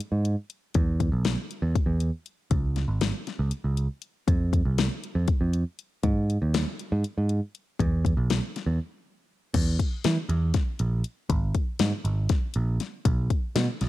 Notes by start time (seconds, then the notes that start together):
0.00 closed hi-hat
0.12 G#2
0.25 closed hi-hat
0.50 closed hi-hat
0.74 E2, kick, closed hi-hat
1.00 kick, closed hi-hat
1.12 B1
1.25 snare, closed hi-hat
1.51 closed hi-hat
1.62 E2
1.75 kick, closed hi-hat
1.86 E2
2.00 closed hi-hat
2.26 closed hi-hat
2.51 C#2, kick, closed hi-hat
2.76 snare, closed hi-hat
2.88 G#1
3.01 snare, closed hi-hat
3.27 snare, closed hi-hat
3.39 C#2
3.51 closed hi-hat
3.64 C#2
3.77 closed hi-hat
4.02 closed hi-hat
4.28 F2, kick, closed hi-hat
4.53 kick, closed hi-hat
4.65 C2
4.78 snare, closed hi-hat
5.04 closed hi-hat
5.15 F2
5.28 kick, closed hi-hat
5.41 F2
5.53 closed hi-hat
5.79 closed hi-hat
6.03 G#2, kick, closed hi-hat
6.30 closed hi-hat
6.42 D#2
6.54 snare, closed hi-hat
6.79 closed hi-hat
6.92 G#2
7.04 closed hi-hat
7.18 G#2
7.29 closed hi-hat
7.55 closed hi-hat
7.80 E2, kick, closed hi-hat
8.05 kick, closed hi-hat
8.17 B1
8.30 snare, closed hi-hat
8.56 snare, closed hi-hat
8.66 E2
9.54 E2, kick, closed hi-hat, crash
9.79 kick, closed hi-hat
10.04 E3, snare, closed hi-hat
10.29 E2, closed hi-hat
10.54 kick, snare, closed hi-hat
10.79 A#1, closed hi-hat
11.04 closed hi-hat
11.30 G#1, kick, closed hi-hat
11.55 kick, closed hi-hat
11.79 G#2, snare, closed hi-hat
12.04 G#1, closed hi-hat
12.29 kick, snare, closed hi-hat
12.54 A#1, closed hi-hat
12.80 snare, closed hi-hat
13.05 B1, kick, closed hi-hat
13.30 kick, closed hi-hat
13.56 B2, snare, closed hi-hat
13.81 B1, snare, closed hi-hat